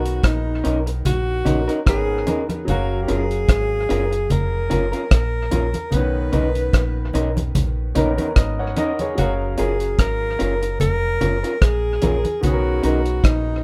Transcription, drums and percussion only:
0.06 closed hi-hat
0.23 kick, cross-stick, closed hi-hat
0.65 closed hi-hat
0.87 closed hi-hat
1.05 closed hi-hat, low conga
1.46 closed hi-hat, low conga
1.69 closed hi-hat
1.87 kick, cross-stick, closed hi-hat
2.27 closed hi-hat, high conga
2.49 closed hi-hat, high conga
2.68 closed hi-hat, low conga
3.08 closed hi-hat
3.31 closed hi-hat
3.49 kick, cross-stick, closed hi-hat
3.90 closed hi-hat
4.13 closed hi-hat
4.30 closed hi-hat, low conga
4.71 closed hi-hat, low conga
4.93 closed hi-hat
5.11 kick, cross-stick, closed hi-hat
5.51 closed hi-hat, high conga
5.74 closed hi-hat, high conga
5.92 closed hi-hat, low conga
6.33 closed hi-hat, low conga
6.55 closed hi-hat
6.73 kick, cross-stick, closed hi-hat
7.13 closed hi-hat, high conga
7.37 closed hi-hat, high conga
7.55 closed hi-hat, high conga, low conga
7.95 closed hi-hat, low conga
8.18 closed hi-hat, high conga
8.36 kick, cross-stick, closed hi-hat
8.76 closed hi-hat, high conga
8.99 closed hi-hat, high conga
9.18 closed hi-hat, low conga
9.58 closed hi-hat
9.80 closed hi-hat
9.99 kick, cross-stick, closed hi-hat
10.40 closed hi-hat
10.63 closed hi-hat
10.80 closed hi-hat, low conga
11.21 closed hi-hat, low conga
11.44 closed hi-hat
11.62 kick, cross-stick, closed hi-hat
12.02 closed hi-hat, high conga
12.25 closed hi-hat, high conga
12.43 closed hi-hat, low conga
12.83 closed hi-hat
13.06 closed hi-hat
13.24 kick, cross-stick, closed hi-hat

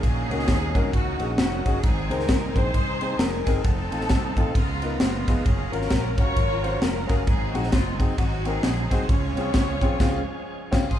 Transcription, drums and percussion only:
0.03 kick, ride
0.31 ride
0.39 snare
0.48 kick, snare, ride
0.75 kick, ride
0.93 kick, ride
1.20 ride
1.38 snare, ride
1.66 kick, ride
1.83 kick, ride
2.11 ride
2.20 snare
2.29 kick, snare, ride
2.56 kick, ride
2.74 kick, ride
3.01 ride
3.19 snare, ride
3.46 kick, snare, ride
3.64 kick, ride
3.92 ride
4.01 snare
4.09 kick, snare, ride
4.37 kick, ride
4.55 kick, ride
4.82 ride
5.00 snare, ride
5.27 kick, snare, ride
5.46 kick, ride
5.73 ride
5.82 snare
5.90 kick, snare, ride
6.18 kick, ride
6.37 kick, ride
6.64 ride
6.82 snare, ride
7.09 kick, snare, ride
7.27 kick, ride
7.55 ride
7.63 snare
7.72 kick, snare, ride
8.00 kick, ride
8.18 kick, ride
8.45 ride
8.63 snare, ride
8.91 kick, snare, ride
9.09 kick, ride
9.37 ride
9.54 kick, snare, ride
9.81 kick, ride
10.00 kick, snare, crash
10.73 kick, snare, crash
10.91 kick, crash

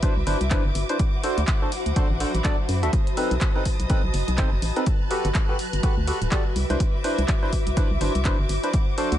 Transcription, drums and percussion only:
0.03 kick, closed hi-hat
0.27 open hi-hat
0.41 closed hi-hat
0.51 kick, clap, closed hi-hat
0.75 open hi-hat
0.89 closed hi-hat
0.99 kick, closed hi-hat
1.24 open hi-hat
1.38 closed hi-hat
1.47 kick, clap, closed hi-hat
1.72 open hi-hat
1.86 closed hi-hat
1.96 kick, closed hi-hat
2.20 open hi-hat
2.35 closed hi-hat
2.44 kick, clap, closed hi-hat
2.69 open hi-hat
2.83 closed hi-hat
2.93 kick, closed hi-hat
3.07 closed hi-hat
3.17 open hi-hat
3.31 closed hi-hat
3.41 kick, clap, closed hi-hat
3.65 kick, open hi-hat
3.80 closed hi-hat
3.90 kick, closed hi-hat
4.14 open hi-hat
4.28 closed hi-hat
4.38 kick, clap, closed hi-hat
4.62 open hi-hat
4.76 closed hi-hat
4.86 kick, closed hi-hat
5.11 open hi-hat
5.25 closed hi-hat
5.35 kick, clap, closed hi-hat
5.59 open hi-hat
5.73 closed hi-hat
5.83 kick, closed hi-hat
6.07 open hi-hat
6.22 closed hi-hat
6.31 kick, clap, closed hi-hat
6.56 open hi-hat
6.70 closed hi-hat
6.80 kick, closed hi-hat
7.04 open hi-hat
7.18 closed hi-hat
7.28 kick, clap, closed hi-hat
7.53 kick, open hi-hat
7.67 closed hi-hat
7.77 kick, closed hi-hat
8.01 open hi-hat
8.15 closed hi-hat
8.25 kick, clap, closed hi-hat
8.49 open hi-hat
8.63 closed hi-hat
8.73 kick, closed hi-hat
8.98 open hi-hat
9.12 closed hi-hat

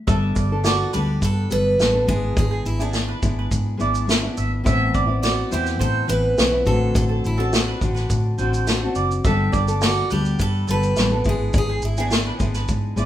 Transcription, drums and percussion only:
0.08 kick, shaker
0.36 kick, shaker
0.64 snare, shaker
0.93 shaker
1.22 kick, shaker
1.51 shaker
1.80 snare, shaker
2.08 kick, shaker
2.37 kick, shaker
2.66 shaker
2.81 shaker
2.93 snare, shaker
3.23 kick, shaker
3.51 kick, shaker
3.80 shaker
3.95 shaker
4.09 snare, shaker
4.37 shaker
4.66 kick, shaker
4.94 kick, shaker
5.23 snare, shaker
5.52 shaker
5.66 snare, shaker
5.81 kick, shaker
6.09 shaker
6.38 snare, shaker
6.66 kick, shaker
6.95 kick, shaker
7.25 shaker
7.53 snare, shaker
7.81 kick, shaker
7.96 snare, shaker
8.10 kick, shaker
8.39 shaker
8.54 shaker
8.67 snare, shaker
8.95 shaker
9.11 shaker
9.25 kick, shaker
9.53 kick, shaker
9.68 shaker
9.81 snare, shaker
10.10 shaker
10.25 shaker
10.39 kick, shaker
10.68 shaker
10.83 shaker
10.96 snare, shaker
11.25 kick, shaker
11.54 kick, shaker
11.82 shaker
11.97 shaker
12.11 snare, shaker
12.40 kick, shaker
12.54 snare, shaker
12.68 kick, shaker
12.97 shaker

